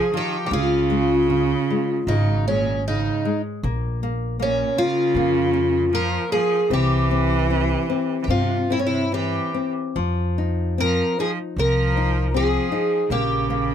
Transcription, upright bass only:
0.51 C#2
2.07 G#1
3.63 A#1
5.14 F2
6.70 C2
8.28 G2
9.96 F2
11.56 C2
13.10 A#1

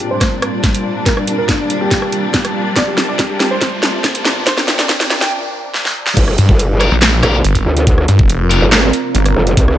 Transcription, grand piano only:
0.11 C5
1.06 A#4
1.17 D4
1.28 D4
1.38 A#4
1.49 D4
1.60 D4
1.70 D4
1.81 G4
2.76 D5
2.87 G4
2.98 G4
3.08 D5
3.19 G4
3.30 G4
3.40 G4
3.51 C5
4.47 C5
4.57 C4
4.68 C4
4.79 D5
4.89 C4
5.00 C4
5.10 C4
5.21 G5

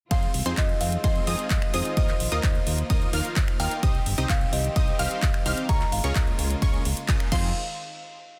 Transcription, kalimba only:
0.11 F5
0.58 D#5
0.81 F5
1.04 D#5
1.74 C5
1.97 D#5
3.60 G5
4.30 F5
4.53 D#5
4.99 F5
5.46 D#5
5.69 A#5
5.92 F5
7.32 F5

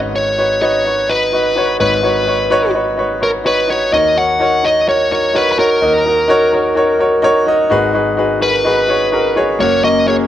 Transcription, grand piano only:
Already playing: G#1 G#2 D#4 F#4 B4 C#5
0.37 D#4 F#4 B4 C#5
0.61 D#4 F#4 B4 D#5
0.84 D#4 F#4 B4 C#5
1.08 D#4 F#4 B4 D#5
1.32 D#4 F#4 B4 D#5
1.55 D#4 F#4 B4 C#5
1.79 G#1 G#2 D#4 F#4 B4 C#5
2.02 D#4 F#4 B4 C#5
2.26 D#4 F#4 B4 C#5
2.50 D#4 F#4 B4 C#5
2.74 D#4 F#4 B4 C#5
2.97 D#4 F#4 B4 C#5
3.20 D#4 F#4 B4 C#5
3.44 D#4 F#4 B4 C#5
3.68 D#4 F#4 B4 C#5
3.92 D#2 D#3 D#4 F#4 A#4 C#5
4.16 D#4 F#4 A#4 C#5
4.39 D#4 F#4 A#4 C#5
4.63 D#4 F#4 A#4 C#5
4.87 D#4 F#4 A#4 C#5
5.10 D#4 F#4 A#4 C#5
5.34 D#4 F#4 A#4 C#5
5.57 D#4 F#4 A#4 C#5
5.81 D#2 D#3 D#4 F#4 A#4 D#5
6.05 D#4 F#4 A#4 D#5
6.28 D#4 F#4 A#4 C#5
6.52 D#4 F#4 A#4 C#5
6.75 D#4 F#4 A#4 C#5
6.99 D#4 F#4 A#4 C#5
7.22 D#4 F#4 A#4 C#5
7.46 D#4 F#4 A#4 D#5
7.70 G#1 G#2 D#4 F#4 G#4 B4
7.93 D#4 F#4 G#4 B4
8.17 D#4 F#4 G#4 B4
8.40 D#4 F#4 G#4 A#4
8.64 D#4 F#4 G#4 B4
8.88 D#4 F#4 G#4 C#5
9.11 D#4 F#4 G#4 A#4
9.35 D#4 F#4 G#4 C#5
9.59 F#1 F#2 A#3 C#4 F#4 A#4
9.83 A#3 C#4 F#4 A#4
10.06 A#3 C#4 F#4 G#4

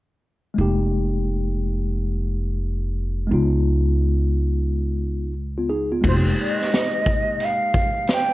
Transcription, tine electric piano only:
0.54 G#3 A#3
0.59 D#4 G4
3.27 G#3 B3
3.31 D#4 F4
5.58 B3 F4
5.69 D#4 G#4
5.92 B3 F4
6.01 G#3 A#3
6.05 D#4 F#4
6.14 G4

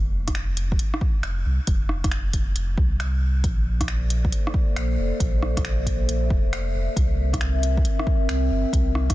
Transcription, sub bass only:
Already playing: F1
1.23 F1
1.46 C2
1.68 F1
2.04 F1
2.56 F1
2.78 C2
3.44 A#1
4.77 A#1
4.99 F1
5.20 A#1
5.57 A#1
6.09 A#1
6.31 F1
6.45 F1
6.75 F1
6.97 C2
8.30 C2
8.51 G1
8.73 C2
9.10 C2

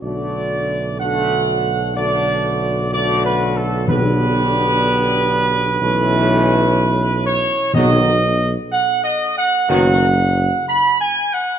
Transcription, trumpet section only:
0.03 D5
0.99 F#5
1.96 D5
2.93 D5
3.25 B4
3.56 A4
3.89 B4
7.25 C#5
7.74 D#5
8.72 F#5
9.04 D#5
9.37 F#5
9.70 F#5
10.68 B5
11.01 G#5
11.33 F#5

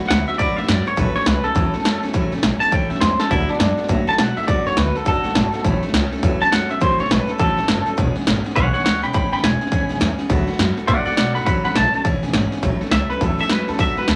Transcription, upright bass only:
0.10 D2
0.39 F#2
0.57 D2
0.68 F#2
0.87 muted upright bass stroke
0.97 A1
1.16 muted upright bass stroke
1.26 C#2
1.45 muted upright bass stroke
1.56 E2
1.74 muted upright bass stroke
1.85 F#2
2.03 E2
2.14 D2
2.33 C#2
2.43 A1
2.61 muted upright bass stroke
2.72 C#2
2.90 A1
3.02 E2
3.31 D2
3.50 muted upright bass stroke
3.60 F#2
3.78 muted upright bass stroke
3.89 A2
4.08 muted upright bass stroke
4.19 B2
4.37 A2
4.48 F#2
4.66 F#2
4.77 D2
5.06 F#2
5.25 D2
5.36 G#1
5.54 muted upright bass stroke
5.65 A1
5.83 muted upright bass stroke
5.93 C#2
6.12 muted upright bass stroke
6.23 E2
6.42 muted upright bass stroke
6.52 F#2
6.71 E2
6.82 D2
7.00 C#2
7.11 A1
7.29 muted upright bass stroke
7.39 C#2
7.58 A1
7.69 F#1
7.87 muted upright bass stroke
7.98 E1
8.17 muted upright bass stroke
8.27 G#1
8.56 B1
8.85 D2
9.03 B1
9.14 A1
9.33 G#1
9.43 E1
9.72 G#1
9.90 E1
10.01 E2
10.30 D2
10.59 F#2
10.77 muted upright bass stroke
10.88 A2
11.07 muted upright bass stroke
11.18 B2
11.36 G#1
11.47 A1
11.65 C#2
11.77 A1
11.94 muted upright bass stroke
12.05 E1
12.22 E1
12.34 G#1
12.51 muted upright bass stroke
12.63 A1
12.81 muted upright bass stroke
12.91 C#2
13.10 muted upright bass stroke
13.21 E2
13.39 muted upright bass stroke
13.50 F#2
13.68 E2
13.79 D2
13.97 F#2
14.08 D2

